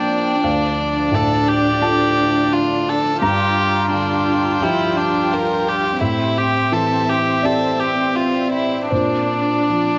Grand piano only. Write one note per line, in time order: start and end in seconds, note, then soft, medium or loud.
0.00 0.40 A#2 soft
0.00 0.46 F3 soft
0.00 0.40 C4 soft
0.00 0.41 F4 soft
0.00 0.47 C5 medium
0.00 0.46 D5 medium
0.00 0.40 G5 medium
0.44 3.17 D2 soft
0.44 1.79 F5 medium
1.12 2.24 A2 soft
1.82 3.17 D4 soft
1.82 3.17 F4 soft
1.82 3.17 A4 soft
1.82 3.17 A5 medium
3.22 5.96 G2 soft
3.22 4.57 A#5 medium
3.91 5.02 D3 soft
4.61 5.96 F3 soft
4.61 5.96 D4 soft
4.61 5.97 G4 soft
4.61 5.27 G5 medium
5.32 5.63 F5 medium
6.01 8.88 A2 soft
6.01 7.39 E5 medium
6.72 7.86 E3 soft
7.43 8.88 C4 soft
7.43 8.88 G4 soft
7.43 8.87 D5 medium
7.43 8.88 E5 soft
8.90 9.98 A#2 soft
8.90 9.98 C5 soft
9.69 9.98 F3 soft